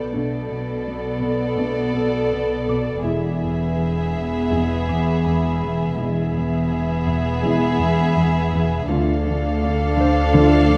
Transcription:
0.00 1.09 A5 soft
0.00 1.10 F#6 soft
0.00 3.09 G6 soft
0.10 3.01 B1 soft
0.10 3.01 B2 soft
0.10 0.35 B2 soft
0.10 0.38 A3 soft
0.10 3.01 B3 soft
0.10 0.38 D4 soft
0.10 3.00 A4 soft
0.10 3.00 B4 soft
0.10 3.00 D5 soft
0.10 3.01 D5 soft
0.49 0.71 B2 soft
0.86 1.07 B3 soft
1.22 1.44 B2 soft
1.57 1.80 B2 medium
1.57 1.84 A3 soft
1.57 1.84 D4 soft
1.95 2.17 B2 soft
1.95 5.85 E6 soft
2.32 2.54 B2 soft
2.69 2.91 B2 soft
2.69 4.88 D5 soft
2.69 4.88 D6 soft
3.03 5.93 E1 soft
3.03 3.27 E2 medium
3.03 5.94 E2 medium
3.03 3.31 G#3 soft
3.03 5.94 B3 medium
3.03 3.30 E4 soft
3.03 5.96 G#4 soft
3.03 5.93 G#4 soft
3.03 5.93 B4 soft
3.03 5.93 E5 medium
3.03 5.96 E5 soft
3.43 3.64 E2 soft
3.78 4.00 E3 soft
4.15 4.37 E2 soft
4.50 4.73 E2 medium
4.50 4.76 G#3 soft
4.50 4.77 E4 soft
4.89 5.10 E2 soft
4.89 8.79 D6 soft
5.24 5.47 E2 soft
5.24 8.93 B5 soft
5.61 5.83 E2 soft
5.96 8.86 E1 medium
5.96 8.86 E2 medium
5.96 6.19 E2 medium
5.96 6.23 G#3 medium
5.96 8.86 B3 medium
5.96 6.23 E4 medium
5.96 8.86 G#4 medium
5.96 8.86 G#4 soft
5.96 8.86 B4 soft
5.96 8.86 E5 soft
5.96 8.86 E5 medium
6.34 6.56 E2 soft
6.69 6.92 E3 soft
7.06 7.28 E2 soft
7.42 7.66 E2 medium
7.42 7.69 G#3 medium
7.42 7.69 E4 medium
7.80 8.02 E2 medium
8.17 8.39 E2 medium
8.53 8.75 E2 medium
8.88 10.77 D2 medium
8.88 9.11 D3 medium
8.88 9.15 A3 medium
8.88 10.77 D4 medium
8.88 9.15 F4 medium
8.88 10.77 A4 medium
8.88 10.77 A4 soft
8.88 10.77 D5 soft
8.88 10.77 F5 soft
8.88 10.77 F5 medium
9.26 9.48 D3 medium
9.63 9.85 D4 medium
9.99 10.21 D3 medium
9.99 10.77 C5 medium
10.36 10.58 D3 medium
10.36 10.63 A3 medium
10.36 10.64 F4 medium
10.72 10.77 D3 medium

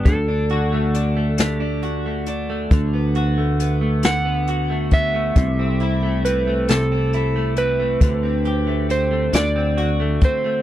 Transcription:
0.00 0.15 G2 medium
0.00 0.15 B3 medium
0.00 0.28 D4 medium
0.00 0.15 G4 medium
0.05 2.67 D2 medium
0.05 1.38 D3 medium
0.05 1.45 A4 medium
0.05 kick medium
0.05 closed hi-hat medium
0.28 0.94 D4 medium
0.49 1.83 F#4 medium
0.49 closed hi-hat medium
0.72 1.16 A3 medium
0.94 1.60 D4 medium
0.94 closed hi-hat medium
1.17 2.05 A3 medium
1.38 2.71 D3 medium
1.38 snare loud
1.38 closed hi-hat medium
1.45 2.23 G4 medium
1.60 2.27 D4 medium
1.83 3.16 F#4 soft
1.83 closed hi-hat medium
2.06 2.49 A3 medium
2.26 2.93 D4 medium
2.26 closed hi-hat medium
2.50 2.96 A3 medium
2.71 5.32 D2 medium
2.71 4.02 D3 medium
2.71 kick loud
2.71 closed hi-hat medium
2.93 3.59 B3 medium
3.15 4.47 F#4 medium
3.15 closed hi-hat soft
3.38 3.81 A3 medium
3.60 4.24 B3 soft
3.60 closed hi-hat medium
3.81 4.70 A3 medium
4.03 5.45 D3 medium
4.03 4.93 F#5 medium
4.03 snare loud
4.03 closed hi-hat medium
4.25 4.91 B3 medium
4.47 5.45 F#4 medium
4.47 closed hi-hat medium
4.70 5.14 A3 medium
4.91 5.45 B3 medium
4.91 6.29 E5 loud
4.91 kick medium
4.91 closed hi-hat medium
5.14 6.02 A3 medium
5.36 7.97 C2 medium
5.36 6.68 C3 medium
5.36 kick loud
5.36 closed hi-hat medium
5.59 6.25 C4 medium
5.80 7.13 E4 medium
5.80 closed hi-hat soft
6.03 6.47 A3 medium
6.25 6.91 C4 medium
6.25 6.70 B4 medium
6.25 closed hi-hat medium
6.47 7.35 A3 medium
6.68 8.10 C3 medium
6.68 7.58 A4 medium
6.68 snare loud
6.68 closed hi-hat medium
6.92 7.58 C4 medium
7.13 8.11 E4 medium
7.13 closed hi-hat medium
7.36 7.79 A3 medium
7.56 8.23 C4 medium
7.56 8.91 B4 medium
7.56 closed hi-hat medium
7.80 8.48 A3 medium
8.01 9.30 D2 medium
8.01 9.33 D3 medium
8.01 kick loud
8.01 closed hi-hat medium
8.23 8.88 C4 medium
8.45 9.43 G4 medium
8.45 closed hi-hat soft
8.67 9.10 A3 medium
8.89 9.42 C4 soft
8.89 9.36 C5 medium
8.89 closed hi-hat medium
9.11 9.42 A3 medium
9.33 10.18 D2 medium
9.33 10.62 D3 medium
9.33 10.24 D5 medium
9.33 snare loud
9.33 closed hi-hat medium
9.56 10.20 C4 medium
9.78 10.62 F#4 medium
9.78 closed hi-hat medium
10.00 10.43 A3 medium
10.21 10.62 C4 medium
10.21 10.62 C5 medium
10.21 kick medium
10.21 closed hi-hat medium
10.44 10.62 A3 medium

